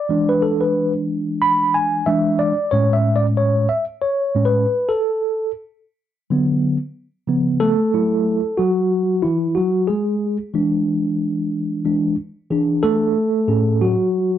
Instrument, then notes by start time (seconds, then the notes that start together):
tine electric piano
Already playing: D5
0.09 E3 G#3 D4
0.29 B4
0.42 A4
0.61 B4
1.42 B5
1.74 G#5
2.06 E3 G#3 D4 E5
2.39 D5
2.71 A2 G#3 C#4 C#5
2.93 E5
3.16 D5
3.37 C#5
3.69 E5
4.02 C#5
4.35 A2 G#3 C#4
4.45 B4
4.89 A4
6.30 D3 F#3 B3
7.27 C#3 F3 B3
7.60 A3 A4
7.93 F#3 A3 E4
8.57 F#3 F#4
9.22 E3 E4
9.55 F#3 F#4
9.87 G#3 G#4
10.54 E3 G#3 D4
11.85 E3 G#3 D4
12.51 E3 D4 G#4
12.83 A3 A4
13.48 A2 C#4 G#4
13.81 F#3 F#4